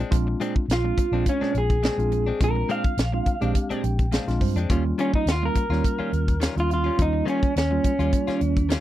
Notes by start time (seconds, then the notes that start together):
0.00 G#3 C4 D4
0.11 A#1 G#3 C4 D4 F4, kick, closed hi-hat
0.27 muted clean electric guitar stroke
0.40 A#2 G#3 C4 D4, closed hi-hat
0.55 muted clean electric guitar stroke, kick
0.68 A#1, snare, closed hi-hat
0.73 F4
0.84 G#3 C4 D4 F4, muted clean electric guitar stroke
0.98 muted clean electric guitar stroke, kick, closed hi-hat
1.12 A#1 G#3 C4 D4 F4
1.26 C#4, kick, closed hi-hat
1.41 A#2 G#3 C4 D4, muted fingered electric bass stroke, snare
1.54 A#1 G#4, muted clean electric guitar stroke, closed hi-hat
1.70 kick, closed hi-hat
1.83 A#2 G#3 C4 D4, snare, closed hi-hat
1.98 A#1 G#3 C4 D4 F4, muted clean electric guitar stroke, closed hi-hat
2.12 muted clean electric guitar stroke, closed hi-hat
2.26 G#3 C4 D4
2.40 A#1 G#3 C4 D4 F4 A#4, kick, closed hi-hat
2.56 muted clean electric guitar stroke
2.69 A#2 G#3 C4 D4 F5, closed hi-hat
2.84 kick, closed hi-hat
2.97 A#1, snare, closed hi-hat
3.12 G#3 C4 D4 F4, muted clean electric guitar stroke
3.26 muted clean electric guitar stroke, kick, closed hi-hat
3.41 A#1 G#3 C4 D4 G4, closed hi-hat
3.55 muted clean electric guitar stroke, kick, closed hi-hat
3.70 A#2 G#3 C4 D4, muted fingered electric bass stroke, closed hi-hat
3.84 A#1 G5, closed hi-hat
3.99 kick, closed hi-hat
4.12 A#2 G#3 C4 D4 F5, snare, closed hi-hat
4.27 A#1 G#3 C4 D4 F4, snare, closed hi-hat
4.41 G2 C5, muted clean electric guitar stroke, kick, open hi-hat
4.56 F2 G#3 C4 D4, closed hi-hat
4.70 D#2 D#3 G3 A#3 C#4 F4, kick, closed hi-hat
4.85 muted clean electric guitar stroke
4.98 D#3 G3 C#4 F4, closed hi-hat
5.14 D#4, kick
5.26 D#2, snare, closed hi-hat
5.30 F4
5.42 G3 A#3 C#4 F4 A#4, muted clean electric guitar stroke
5.55 muted clean electric guitar stroke, kick, closed hi-hat
5.69 D#2 G3 A#3 C#4 F4, snare
5.84 kick, closed hi-hat
5.99 D#3 G3 C#4 F4, muted fingered electric bass stroke
6.12 D#2, muted clean electric guitar stroke, closed hi-hat
6.28 kick, closed hi-hat
6.40 D#3 G3 C#4 F4, snare, closed hi-hat
6.56 D#2 G3 A#3 C#4 F4, muted clean electric guitar stroke, closed hi-hat
6.69 muted clean electric guitar stroke, closed hi-hat
6.74 F4
6.84 G3 C#4 F4
6.98 D#2 G3 A#3 C#4 F4, kick, closed hi-hat
7.02 D#4
7.13 muted clean electric guitar stroke
7.26 D#3 G3 C#4 F4, closed hi-hat
7.42 muted clean electric guitar stroke, kick, closed hi-hat
7.56 D#2 C#4, snare, closed hi-hat
7.71 G3 A#3 C#4 F4, muted clean electric guitar stroke
7.84 muted clean electric guitar stroke, kick, closed hi-hat
7.99 D#2 G3 A#3 C#4 F4, closed hi-hat
8.12 muted clean electric guitar stroke, kick, closed hi-hat
8.27 D#3 G3 C#4 F4, muted fingered electric bass stroke, snare, closed hi-hat
8.41 D#2, closed hi-hat
8.57 kick, closed hi-hat
8.69 D#3 G3 C#4 F4, snare, closed hi-hat